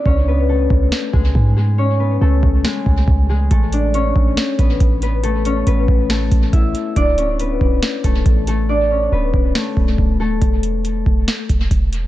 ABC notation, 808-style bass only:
X:1
M:4/4
L:1/8
Q:1/4=139
K:Dlyd
V:1 name="808-style bass" clef=bass
C,,3 C,, z C,, G,,2- | G,,2 C,, C,, z C,, C,,2 | A,,,3 A,,, z A,,, A,,,2- | A,,,2 A,,, A,,,2 A,,, A,,, z |
D,,,3 D,,, z D,,, A,,,2- | A,,,2 D,,, D,,, z D,,, D,,,2 | E,,,3 E,,, z E,,, E,,,2 |]